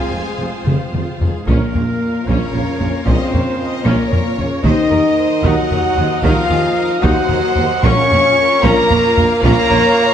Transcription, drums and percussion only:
0.67 taiko mid
0.95 taiko mid
1.21 taiko low
1.48 taiko
1.75 taiko low
2.29 taiko
2.55 taiko low
2.81 taiko low
3.08 taiko
3.34 taiko low
3.87 taiko
4.13 taiko low
4.39 taiko low
4.64 taiko
4.92 taiko low
5.44 taiko
5.72 taiko low
5.98 taiko low
6.24 taiko
6.50 taiko low
7.03 taiko
7.29 taiko low
7.56 taiko low
7.83 taiko
8.11 taiko low
8.63 taiko
8.90 taiko low
9.17 taiko low
9.43 taiko
9.70 taiko low

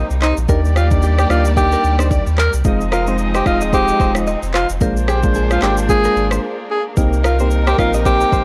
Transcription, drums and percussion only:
0.10 shaker
0.22 cross-stick, clap, shaker
0.37 shaker
0.49 kick, shaker
0.65 shaker
0.76 cross-stick, shaker
0.91 kick, shaker
1.02 shaker
1.18 cross-stick, shaker
1.30 cross-stick, shaker
1.45 shaker
1.57 kick, shaker
1.72 shaker
1.84 shaker
1.99 cross-stick, shaker
2.11 kick, shaker
2.27 shaker
2.38 cross-stick, clap, shaker
2.53 shaker
2.65 kick, shaker
2.81 shaker
2.92 cross-stick, shaker
3.07 shaker
3.18 shaker
3.35 cross-stick, shaker
3.46 kick, cross-stick, shaker
3.61 shaker
3.73 kick, shaker
3.88 shaker
4.00 kick, shaker
4.15 cross-stick, shaker
4.27 shaker
4.43 shaker
4.54 cross-stick, clap, shaker
4.69 shaker
4.81 kick, shaker
4.97 shaker
5.08 cross-stick, shaker
5.23 kick, shaker
5.34 shaker
5.51 cross-stick, shaker
5.62 cross-stick, clap, shaker
5.77 shaker
5.89 kick, shaker
6.04 shaker
6.17 shaker
6.31 cross-stick, shaker
6.97 kick, shaker
7.13 shaker
7.24 cross-stick, shaker
7.39 shaker
7.51 shaker
7.67 cross-stick, shaker
7.78 kick, cross-stick, shaker
7.94 shaker
8.05 kick, shaker
8.20 shaker
8.32 kick, shaker

